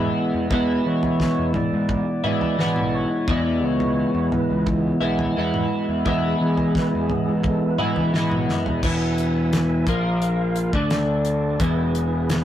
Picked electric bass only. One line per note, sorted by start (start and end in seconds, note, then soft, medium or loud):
0.34 0.48 E2 medium
0.51 0.78 E2 loud
0.86 1.27 E3 medium
1.39 1.52 E2 medium
1.73 2.00 G#2 medium
2.43 2.79 E3 medium
2.77 3.04 B1 medium
3.28 3.64 E2 loud
3.64 4.04 C#2 medium
4.15 4.28 E2 medium
4.50 4.91 C#2 medium
5.01 5.28 B1 medium
5.37 5.64 E2 medium
5.89 6.02 E2 medium
6.06 6.33 E2 loud
6.41 6.82 E3 medium
6.94 7.07 E2 medium
7.29 7.55 G#2 medium
7.98 8.33 E3 medium
8.32 8.45 B1 medium
8.49 8.64 F#2 medium
8.66 8.82 E2 medium
8.83 9.83 E1 medium
9.87 10.70 A#1 medium
10.73 11.56 D2 medium
11.60 12.44 E1 medium